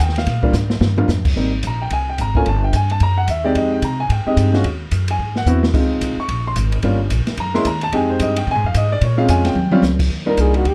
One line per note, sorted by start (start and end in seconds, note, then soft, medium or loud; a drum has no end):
0.00 0.26 D#2 loud
0.00 0.17 G5 medium
0.09 snare soft
0.16 0.43 F5 loud
0.16 snare soft
0.16 ride soft
0.26 0.53 A#2 medium
0.26 kick soft
0.26 snare soft
0.26 ride medium
0.43 0.53 G3 medium
0.43 0.53 A#3 medium
0.43 0.53 D4 medium
0.43 0.53 F4 medium
0.43 kick medium
0.53 0.80 G#2 medium
0.53 snare soft
0.53 hi-hat pedal medium
0.70 snare medium
0.81 1.07 G2 medium
0.81 snare medium
0.97 1.08 G3 medium
0.97 1.08 A#3 medium
0.97 1.08 D4 medium
0.97 1.08 F4 medium
0.97 floor tom medium
1.08 1.35 F2 medium
1.08 snare medium
1.08 hi-hat pedal medium
1.25 kick medium
1.25 crash medium
1.36 1.63 G#1 medium
1.36 1.51 G3 medium
1.36 1.52 A#3 soft
1.36 1.52 C4 soft
1.36 1.52 D#4 medium
1.63 1.90 A#1 medium
1.63 kick soft
1.63 hi-hat pedal soft
1.63 ride medium
1.67 1.82 A#5 medium
1.82 1.92 G5 medium
1.90 2.18 C2 medium
1.90 2.08 G#5 medium
1.90 kick soft
1.90 ride medium
2.09 2.19 G5 medium
2.18 2.45 G#1 medium
2.18 2.36 A#5 medium
2.18 kick soft
2.18 hi-hat pedal medium
2.18 ride medium
2.35 2.45 A3 medium
2.35 2.46 A#3 medium
2.35 2.46 C#4 medium
2.35 2.46 F4 medium
2.35 2.46 G#5 medium
2.35 kick medium
2.46 2.72 G1 medium
2.46 2.63 A5 medium
2.46 kick soft
2.46 ride medium
2.64 2.74 G5 medium
2.73 3.00 G2 medium
2.73 2.91 G#5 medium
2.73 kick soft
2.73 hi-hat pedal medium
2.73 ride medium
2.90 3.01 A5 loud
2.90 ride soft
3.00 3.27 F#2 medium
3.00 3.18 A#5 loud
3.00 kick soft
3.00 ride medium
3.18 3.28 F#5 medium
3.28 3.54 D#2 medium
3.28 3.45 E5 medium
3.28 kick soft
3.28 hi-hat pedal medium
3.28 ride medium
3.44 3.80 G#3 medium
3.44 3.81 C4 medium
3.44 3.81 D#4 medium
3.44 3.81 G4 medium
3.44 3.55 D5 medium
3.55 3.81 F2 medium
3.55 3.72 D#5 medium
3.55 kick soft
3.55 ride medium
3.72 3.83 G5 medium
3.82 4.09 C3 medium
3.82 4.00 A#5 medium
3.82 kick soft
3.82 hi-hat pedal soft
3.82 ride medium
4.00 4.10 G#5 medium
4.09 4.25 G#2 medium
4.09 4.27 G5 medium
4.09 kick soft
4.09 ride medium
4.26 4.52 G#3 medium
4.26 4.52 C4 medium
4.26 4.52 D#4 medium
4.26 4.53 G4 medium
4.26 4.34 D#5 medium
4.26 muted upright bass stroke soft
4.37 4.63 G2 medium
4.37 kick soft
4.37 hi-hat pedal medium
4.37 ride medium
4.53 4.64 G#3 medium
4.53 4.63 C#4 medium
4.53 4.64 F4 medium
4.53 4.64 F#4 medium
4.53 snare soft
4.64 4.91 D#2 medium
4.64 kick soft
4.64 ride medium
4.91 5.18 F#2 medium
4.91 kick soft
4.91 hi-hat pedal medium
4.91 ride medium
5.08 5.35 G#5 medium
5.08 ride medium
5.19 5.45 G#2 medium
5.19 kick soft
5.36 5.47 F#5 medium
5.36 snare soft
5.46 5.73 E2 medium
5.46 5.61 B3 medium
5.46 5.62 C4 medium
5.46 5.62 E4 medium
5.46 5.62 F#4 medium
5.46 hi-hat pedal medium
5.63 snare medium
5.74 6.00 C#2 medium
5.74 6.14 G#3 medium
5.74 6.15 C4 medium
5.74 6.15 D#4 medium
5.74 6.15 F4 medium
5.74 kick medium
5.74 crash medium
6.01 6.16 C2 medium
6.01 kick soft
6.01 hi-hat pedal medium
6.01 ride medium
6.17 6.44 C#6 loud
6.17 muted upright bass stroke soft
6.28 6.55 A#1 medium
6.28 kick soft
6.28 ride medium
6.47 6.53 C6 medium
6.56 6.82 G#1 medium
6.56 kick soft
6.56 hi-hat pedal medium
6.56 ride medium
6.72 ride medium
6.82 7.09 G1 medium
6.82 6.98 G3 medium
6.82 6.98 A#3 medium
6.82 6.98 C#4 medium
6.82 6.99 F4 medium
6.82 kick soft
6.82 ride medium
7.10 7.26 A#1 medium
7.10 kick soft
7.10 hi-hat pedal medium
7.10 ride medium
7.27 muted upright bass stroke soft
7.27 snare soft
7.27 ride soft
7.37 7.64 F#2 medium
7.37 7.55 A#5 medium
7.37 kick soft
7.37 ride medium
7.54 7.64 G#3 medium
7.54 7.64 A#3 medium
7.54 7.64 C#4 medium
7.54 7.64 E4 medium
7.54 7.65 C6 loud
7.54 snare soft
7.65 7.92 D#2 medium
7.65 7.82 A#5 medium
7.65 kick soft
7.65 hi-hat pedal medium
7.65 ride medium
7.81 7.93 A5 loud
7.81 ride medium
7.92 8.19 F2 medium
7.92 8.33 G#3 medium
7.92 8.33 C4 medium
7.92 8.33 D#4 medium
7.92 8.33 G4 medium
7.92 8.10 G#5 medium
7.92 kick soft
7.92 ride medium
8.10 8.20 C5 medium
8.20 8.46 G2 loud
8.20 8.37 D#5 medium
8.20 kick soft
8.20 hi-hat pedal medium
8.20 ride medium
8.36 8.47 G5 medium
8.36 ride medium
8.47 8.56 C3 medium
8.47 8.65 G#5 loud
8.47 kick soft
8.56 8.63 G#2 medium
8.64 8.73 F2 medium
8.64 8.75 F5 medium
8.74 9.01 G#2 loud
8.74 8.91 D#5 medium
8.74 kick soft
8.74 hi-hat pedal medium
8.74 ride medium
8.92 9.02 D5 loud
9.01 9.28 A#2 medium
9.01 9.19 C#5 medium
9.01 kick soft
9.01 ride medium
9.17 9.53 G#3 medium
9.17 9.54 C4 medium
9.17 9.54 C#4 medium
9.17 9.54 F4 medium
9.17 9.29 F5 loud
9.28 9.55 F2 loud
9.28 9.45 G#5 loud
9.28 kick soft
9.28 hi-hat pedal medium
9.28 ride medium
9.45 9.81 G5 loud
9.45 snare soft
9.45 ride medium
9.55 9.81 D#2 medium
9.55 high tom medium
9.71 9.82 G3 loud
9.71 9.82 C4 medium
9.71 9.82 C#4 medium
9.71 9.82 F4 loud
9.71 high tom medium
9.82 10.09 C#2 medium
9.82 snare medium
9.82 hi-hat pedal medium
9.99 kick medium
9.99 crash medium
10.10 10.37 D#2 medium
10.10 kick soft
10.26 10.63 G3 medium
10.26 10.63 A#3 medium
10.26 10.63 D4 medium
10.26 10.63 D#4 medium
10.26 10.63 F4 medium
10.26 10.42 A#4 medium
10.37 10.64 C2 medium
10.37 10.56 G#4 medium
10.37 kick soft
10.37 hi-hat pedal medium
10.37 ride medium
10.54 10.70 F#4 medium
10.54 ride soft
10.65 10.74 D2 medium
10.65 10.74 G4 medium
10.65 kick soft
10.65 ride medium